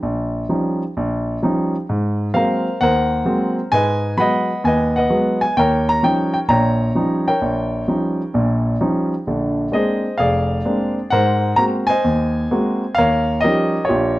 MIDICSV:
0, 0, Header, 1, 2, 480
1, 0, Start_track
1, 0, Tempo, 461894
1, 27, Time_signature, 4, 2, 24, 8
1, 14748, End_track
2, 0, Start_track
2, 0, Title_t, "Grand piano"
2, 0, Program_c, 0, 0
2, 29, Note_on_c, 0, 34, 65
2, 445, Note_off_c, 0, 34, 0
2, 511, Note_on_c, 0, 53, 44
2, 512, Note_on_c, 0, 55, 39
2, 516, Note_on_c, 0, 63, 45
2, 517, Note_on_c, 0, 61, 41
2, 849, Note_off_c, 0, 53, 0
2, 849, Note_off_c, 0, 55, 0
2, 851, Note_off_c, 0, 61, 0
2, 851, Note_off_c, 0, 63, 0
2, 1007, Note_on_c, 0, 34, 66
2, 1415, Note_off_c, 0, 34, 0
2, 1481, Note_on_c, 0, 53, 51
2, 1485, Note_on_c, 0, 61, 48
2, 1486, Note_on_c, 0, 55, 46
2, 1490, Note_on_c, 0, 63, 52
2, 1814, Note_off_c, 0, 53, 0
2, 1816, Note_off_c, 0, 55, 0
2, 1816, Note_off_c, 0, 61, 0
2, 1818, Note_off_c, 0, 63, 0
2, 1967, Note_on_c, 0, 44, 61
2, 2375, Note_off_c, 0, 44, 0
2, 2428, Note_on_c, 0, 56, 40
2, 2431, Note_on_c, 0, 54, 42
2, 2431, Note_on_c, 0, 77, 83
2, 2433, Note_on_c, 0, 58, 38
2, 2435, Note_on_c, 0, 60, 49
2, 2456, Note_on_c, 0, 70, 61
2, 2456, Note_on_c, 0, 72, 57
2, 2767, Note_off_c, 0, 56, 0
2, 2769, Note_off_c, 0, 54, 0
2, 2770, Note_off_c, 0, 58, 0
2, 2771, Note_off_c, 0, 60, 0
2, 2876, Note_off_c, 0, 77, 0
2, 2916, Note_on_c, 0, 78, 89
2, 2918, Note_on_c, 0, 39, 56
2, 2922, Note_off_c, 0, 72, 0
2, 2927, Note_off_c, 0, 70, 0
2, 2937, Note_on_c, 0, 72, 64
2, 2942, Note_on_c, 0, 70, 65
2, 3331, Note_off_c, 0, 39, 0
2, 3381, Note_on_c, 0, 54, 50
2, 3382, Note_on_c, 0, 56, 49
2, 3384, Note_on_c, 0, 58, 45
2, 3386, Note_on_c, 0, 60, 57
2, 3674, Note_off_c, 0, 78, 0
2, 3724, Note_off_c, 0, 54, 0
2, 3724, Note_off_c, 0, 56, 0
2, 3725, Note_off_c, 0, 58, 0
2, 3726, Note_off_c, 0, 60, 0
2, 3841, Note_off_c, 0, 72, 0
2, 3843, Note_off_c, 0, 70, 0
2, 3862, Note_on_c, 0, 80, 96
2, 3865, Note_on_c, 0, 44, 56
2, 3870, Note_on_c, 0, 56, 55
2, 3887, Note_on_c, 0, 71, 65
2, 3887, Note_on_c, 0, 75, 63
2, 4283, Note_off_c, 0, 44, 0
2, 4286, Note_off_c, 0, 56, 0
2, 4335, Note_on_c, 0, 54, 45
2, 4339, Note_on_c, 0, 83, 89
2, 4344, Note_on_c, 0, 56, 39
2, 4351, Note_on_c, 0, 59, 48
2, 4353, Note_off_c, 0, 75, 0
2, 4359, Note_off_c, 0, 80, 0
2, 4359, Note_on_c, 0, 78, 69
2, 4369, Note_on_c, 0, 75, 71
2, 4681, Note_off_c, 0, 54, 0
2, 4685, Note_off_c, 0, 56, 0
2, 4689, Note_off_c, 0, 59, 0
2, 4796, Note_off_c, 0, 71, 0
2, 4821, Note_on_c, 0, 39, 61
2, 4831, Note_on_c, 0, 80, 76
2, 4838, Note_off_c, 0, 75, 0
2, 4838, Note_off_c, 0, 83, 0
2, 4849, Note_on_c, 0, 71, 59
2, 4854, Note_on_c, 0, 75, 63
2, 5138, Note_off_c, 0, 78, 0
2, 5154, Note_on_c, 0, 78, 74
2, 5155, Note_off_c, 0, 75, 0
2, 5156, Note_off_c, 0, 71, 0
2, 5163, Note_off_c, 0, 80, 0
2, 5171, Note_on_c, 0, 75, 60
2, 5172, Note_on_c, 0, 71, 53
2, 5241, Note_off_c, 0, 39, 0
2, 5297, Note_on_c, 0, 56, 46
2, 5299, Note_on_c, 0, 54, 54
2, 5308, Note_on_c, 0, 59, 57
2, 5624, Note_on_c, 0, 80, 81
2, 5642, Note_off_c, 0, 56, 0
2, 5643, Note_off_c, 0, 54, 0
2, 5647, Note_off_c, 0, 59, 0
2, 5647, Note_off_c, 0, 78, 0
2, 5756, Note_off_c, 0, 75, 0
2, 5757, Note_off_c, 0, 71, 0
2, 5785, Note_on_c, 0, 39, 59
2, 5789, Note_off_c, 0, 80, 0
2, 5789, Note_on_c, 0, 79, 88
2, 5809, Note_on_c, 0, 73, 68
2, 5813, Note_on_c, 0, 70, 66
2, 6121, Note_on_c, 0, 82, 93
2, 6122, Note_off_c, 0, 79, 0
2, 6204, Note_off_c, 0, 39, 0
2, 6262, Note_off_c, 0, 82, 0
2, 6264, Note_on_c, 0, 55, 38
2, 6265, Note_on_c, 0, 53, 46
2, 6271, Note_on_c, 0, 63, 49
2, 6272, Note_on_c, 0, 61, 41
2, 6277, Note_on_c, 0, 79, 84
2, 6568, Note_off_c, 0, 79, 0
2, 6584, Note_on_c, 0, 79, 77
2, 6606, Note_off_c, 0, 53, 0
2, 6606, Note_off_c, 0, 55, 0
2, 6609, Note_off_c, 0, 63, 0
2, 6610, Note_off_c, 0, 61, 0
2, 6636, Note_off_c, 0, 79, 0
2, 6717, Note_off_c, 0, 73, 0
2, 6719, Note_off_c, 0, 70, 0
2, 6738, Note_on_c, 0, 34, 58
2, 6741, Note_on_c, 0, 82, 87
2, 6743, Note_on_c, 0, 46, 64
2, 6755, Note_on_c, 0, 73, 60
2, 6756, Note_on_c, 0, 79, 58
2, 7160, Note_off_c, 0, 34, 0
2, 7163, Note_off_c, 0, 46, 0
2, 7224, Note_on_c, 0, 55, 44
2, 7225, Note_on_c, 0, 53, 51
2, 7233, Note_on_c, 0, 61, 45
2, 7234, Note_on_c, 0, 63, 55
2, 7546, Note_off_c, 0, 79, 0
2, 7549, Note_off_c, 0, 73, 0
2, 7561, Note_on_c, 0, 79, 80
2, 7565, Note_on_c, 0, 73, 54
2, 7566, Note_off_c, 0, 53, 0
2, 7566, Note_off_c, 0, 55, 0
2, 7570, Note_off_c, 0, 61, 0
2, 7571, Note_off_c, 0, 63, 0
2, 7572, Note_on_c, 0, 70, 48
2, 7573, Note_off_c, 0, 82, 0
2, 7707, Note_on_c, 0, 34, 60
2, 8125, Note_off_c, 0, 34, 0
2, 8188, Note_on_c, 0, 53, 45
2, 8189, Note_on_c, 0, 55, 41
2, 8191, Note_on_c, 0, 61, 39
2, 8203, Note_on_c, 0, 63, 45
2, 8528, Note_off_c, 0, 53, 0
2, 8528, Note_off_c, 0, 55, 0
2, 8529, Note_off_c, 0, 61, 0
2, 8535, Note_off_c, 0, 63, 0
2, 8667, Note_on_c, 0, 46, 58
2, 8670, Note_on_c, 0, 34, 64
2, 9085, Note_off_c, 0, 46, 0
2, 9087, Note_off_c, 0, 34, 0
2, 9153, Note_on_c, 0, 53, 52
2, 9154, Note_on_c, 0, 61, 48
2, 9155, Note_on_c, 0, 55, 42
2, 9155, Note_on_c, 0, 63, 55
2, 9435, Note_off_c, 0, 79, 0
2, 9437, Note_off_c, 0, 73, 0
2, 9440, Note_off_c, 0, 70, 0
2, 9490, Note_off_c, 0, 53, 0
2, 9490, Note_off_c, 0, 61, 0
2, 9491, Note_off_c, 0, 55, 0
2, 9491, Note_off_c, 0, 63, 0
2, 9635, Note_on_c, 0, 34, 55
2, 9639, Note_on_c, 0, 50, 63
2, 10049, Note_off_c, 0, 34, 0
2, 10051, Note_off_c, 0, 50, 0
2, 10097, Note_on_c, 0, 56, 46
2, 10100, Note_on_c, 0, 58, 37
2, 10101, Note_on_c, 0, 62, 49
2, 10103, Note_on_c, 0, 60, 40
2, 10115, Note_on_c, 0, 75, 73
2, 10128, Note_on_c, 0, 68, 55
2, 10134, Note_on_c, 0, 72, 55
2, 10442, Note_off_c, 0, 56, 0
2, 10444, Note_off_c, 0, 58, 0
2, 10444, Note_off_c, 0, 62, 0
2, 10445, Note_off_c, 0, 60, 0
2, 10575, Note_on_c, 0, 77, 82
2, 10579, Note_off_c, 0, 68, 0
2, 10591, Note_on_c, 0, 29, 62
2, 10595, Note_on_c, 0, 68, 64
2, 10603, Note_on_c, 0, 74, 66
2, 10606, Note_off_c, 0, 75, 0
2, 11007, Note_off_c, 0, 29, 0
2, 11039, Note_off_c, 0, 72, 0
2, 11070, Note_on_c, 0, 58, 45
2, 11072, Note_on_c, 0, 56, 48
2, 11075, Note_on_c, 0, 62, 55
2, 11078, Note_on_c, 0, 60, 44
2, 11343, Note_off_c, 0, 77, 0
2, 11408, Note_off_c, 0, 58, 0
2, 11409, Note_off_c, 0, 56, 0
2, 11411, Note_off_c, 0, 62, 0
2, 11412, Note_off_c, 0, 60, 0
2, 11510, Note_off_c, 0, 68, 0
2, 11514, Note_off_c, 0, 74, 0
2, 11540, Note_on_c, 0, 78, 96
2, 11557, Note_on_c, 0, 44, 65
2, 11558, Note_on_c, 0, 70, 71
2, 11562, Note_on_c, 0, 72, 69
2, 11970, Note_off_c, 0, 44, 0
2, 12016, Note_on_c, 0, 82, 92
2, 12023, Note_on_c, 0, 58, 36
2, 12024, Note_on_c, 0, 56, 44
2, 12032, Note_on_c, 0, 60, 42
2, 12033, Note_on_c, 0, 66, 50
2, 12038, Note_off_c, 0, 78, 0
2, 12090, Note_off_c, 0, 82, 0
2, 12332, Note_on_c, 0, 80, 88
2, 12343, Note_off_c, 0, 72, 0
2, 12357, Note_on_c, 0, 75, 64
2, 12359, Note_on_c, 0, 72, 67
2, 12364, Note_off_c, 0, 58, 0
2, 12365, Note_off_c, 0, 56, 0
2, 12369, Note_off_c, 0, 60, 0
2, 12370, Note_off_c, 0, 66, 0
2, 12471, Note_off_c, 0, 70, 0
2, 12514, Note_on_c, 0, 39, 60
2, 12928, Note_off_c, 0, 39, 0
2, 13002, Note_on_c, 0, 56, 55
2, 13003, Note_on_c, 0, 58, 48
2, 13008, Note_on_c, 0, 60, 45
2, 13008, Note_on_c, 0, 66, 55
2, 13334, Note_off_c, 0, 56, 0
2, 13334, Note_off_c, 0, 58, 0
2, 13337, Note_off_c, 0, 60, 0
2, 13337, Note_off_c, 0, 66, 0
2, 13428, Note_off_c, 0, 75, 0
2, 13429, Note_off_c, 0, 72, 0
2, 13453, Note_on_c, 0, 77, 98
2, 13487, Note_on_c, 0, 39, 59
2, 13491, Note_off_c, 0, 80, 0
2, 13491, Note_on_c, 0, 70, 69
2, 13491, Note_on_c, 0, 73, 64
2, 13895, Note_off_c, 0, 39, 0
2, 13905, Note_off_c, 0, 77, 0
2, 13930, Note_on_c, 0, 75, 86
2, 13951, Note_off_c, 0, 70, 0
2, 13967, Note_on_c, 0, 53, 45
2, 13967, Note_on_c, 0, 70, 55
2, 13971, Note_on_c, 0, 55, 41
2, 13971, Note_on_c, 0, 63, 52
2, 13973, Note_on_c, 0, 67, 62
2, 13974, Note_on_c, 0, 61, 41
2, 14296, Note_off_c, 0, 53, 0
2, 14298, Note_off_c, 0, 55, 0
2, 14298, Note_off_c, 0, 63, 0
2, 14299, Note_off_c, 0, 61, 0
2, 14375, Note_off_c, 0, 73, 0
2, 14391, Note_on_c, 0, 73, 80
2, 14417, Note_off_c, 0, 67, 0
2, 14433, Note_off_c, 0, 75, 0
2, 14433, Note_on_c, 0, 67, 58
2, 14435, Note_on_c, 0, 65, 58
2, 14448, Note_on_c, 0, 34, 65
2, 14748, Note_off_c, 0, 34, 0
2, 14748, Note_off_c, 0, 65, 0
2, 14748, Note_off_c, 0, 67, 0
2, 14748, Note_off_c, 0, 70, 0
2, 14748, Note_off_c, 0, 73, 0
2, 14748, End_track
0, 0, End_of_file